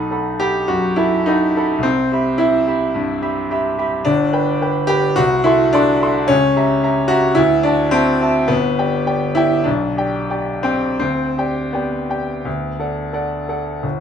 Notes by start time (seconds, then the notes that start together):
Already playing: B1 D#4 A4 F#5 B5
0.11 A4 F#5 B5
0.40 G4 A4 F#5 B5
0.68 F#2 F#4
0.96 E4 A4 F#5 B5
1.26 D#4 A4 F#5 B5
1.57 A4 F#5 B5
1.78 C2
1.83 C4
2.12 G4 E5 B5
2.38 E4 G4 E5 B5
2.67 G4 E5 B5
2.95 G2
3.22 G4 E5 B5
3.51 G4 E5 B5
3.79 G4 E5 B5
4.05 G1 D4
4.33 B4 G5 B5
4.62 B4 G5 B5
4.87 G4 B4 G5 B5
5.16 C2 F#4
5.44 E4 A4 E5 C6
5.73 D4 A4 E5 C6
6.02 A4 E5 C6
6.28 C#2 C#4
6.56 G4 E5 A#5
6.83 G4 E5 A#5
7.08 F#4 G4 E5 A#5
7.35 D2 E4
7.63 D4 F#4 E5 A5
7.91 C4 F#4 E5 A5
8.21 F#4 E5 A5
8.48 G1 B3
8.78 G4 D5 G5
9.06 G4 D5 G5
9.35 E4 G4 D5 G5
9.64 B1 D4
9.97 G4 D5 G5
10.30 G4 D5 G5
10.63 C4 G4 D5 G5
11.00 D2 C4
11.38 G4 D5 G5
11.73 B3 G4 D5 G5
12.10 G4 D5 G5
12.45 D2
12.80 A4 D5 F#5
13.13 A4 D5 F#5
13.49 A4 D5 F#5
13.83 G1